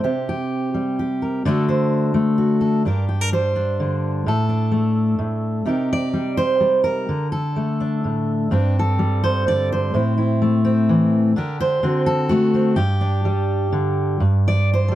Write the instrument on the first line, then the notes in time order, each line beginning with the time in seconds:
steel-string acoustic guitar
Already playing: C4
0.04 C3 G4
0.29 G4
0.74 G3
0.99 G4
1.22 A#4
1.45 D3 A3 D4 F#4 A4
1.69 C5
2.14 A3
2.38 F#4
2.61 A4
2.85 G2 D4 G4 A#4
3.09 G4
3.21 A#4
3.33 G3 C5
3.56 D4
3.80 D3
4.26 A2 A4
4.49 D4
4.72 A3
5.19 A2
5.65 C3 D#4 G4 A#4
5.93 D5
6.13 G3
6.37 C5
6.60 G3
6.84 A#4
7.09 D3
7.32 A4
7.56 A3
7.80 D4
8.04 A2
8.51 G2 C4 D4 G4
8.79 A4
8.99 G3
9.24 C5
9.47 D3 D5
9.72 C5
9.94 A2 C4 E4
10.18 E4
10.42 A3
10.65 C4
10.89 E3
11.36 D3 D4 G4 A#4
11.60 C5
11.83 D3 C4 F#4
12.06 A4
12.29 A3 F#4
12.54 C4
12.76 G2 G4
13.01 D4
13.25 G3
13.72 D3
14.20 G2
14.48 D5
14.74 C5
14.88 G3 A4